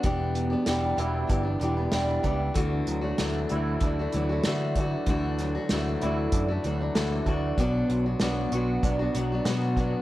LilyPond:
<<
  \new Staff \with { instrumentName = "Steel-string acoustic guitar" } { \time 4/4 \key d \major \tempo 4 = 96 <e b d' g'>8. <b d' g'>16 <e b d' g'>8 <e b d' g'>8 <e b d' g'>16 <b d' g'>16 <e b d' g'>16 <b d' g'>16 <e b d' g'>8 <e b d' g'>8 | <d e a d' fis'>8. <a d' fis'>16 <d e a d' fis'>8 <e a d' fis'>8 <e a d' fis'>16 <a d' fis'>16 <e a d' fis'>16 <a d' fis'>16 <d e a d' fis'>8 <e a d' fis'>8 | <d e a d' fis'>8. <a d' fis'>16 <d e a d' fis'>8 <e a d' fis'>8. <a d' fis'>16 <e a d' fis'>16 <a d' fis'>16 <d e a d' fis'>8 <e a d' fis'>8 | <b, fis b d' fis'>8. <b d' fis'>16 <b, fis b d' fis'>8 <fis b d' fis'>8 <fis b d' fis'>16 <b d' fis'>16 <fis b d' fis'>16 <b d' fis'>16 <b, fis b d' fis'>8 <fis b d' fis'>8 | }
  \new Staff \with { instrumentName = "Clean electric guitar" } { \time 4/4 \key d \major e,8 b,8 g8 e'8 d'8 e8 g8 d'8 | d8 fis8 a8 e'8 d'8 fis8 a8 d'8 | d8 fis8 a8 e'8 d'8 fis8 a8 d'8 | b,8 fis8 b8 fis'8 d'8 fis8 b8 d'8 | }
  \new Staff \with { instrumentName = "Picked electric bass" } { \clef bass \time 4/4 \key d \major e,,4 e,,8 e,,8 g,,8 e,,8 e,,8 cis,8 | d,8 d,8 d,8 d,8 d,8 d,8 d4 | d,4 d,8 d,8 fis,8 d,8 d,8 d,8 | b,,8 b,,8 b,,8 b,,8 b,,8 b,,8 b,4 | }
  \new DrumStaff \with { instrumentName = "Drums" } \drummode { \time 4/4 <hh bd>8 hh8 <hh sn>8 hh8 <hh bd>8 hh8 <hh sn>8 <hh bd>8 | <hh bd>8 hh8 <hh sn>8 hh8 <hh bd>8 hh8 <hh sn>8 <hh bd>8 | <hh bd>8 <hh sn>8 <hh sn>8 hh8 <hh bd>8 hh8 <hh sn>8 <hh bd>8 | <hh bd>8 hh8 <hh sn>8 hh8 <hh bd>8 hh8 <hh sn>8 <hh bd>8 | }
>>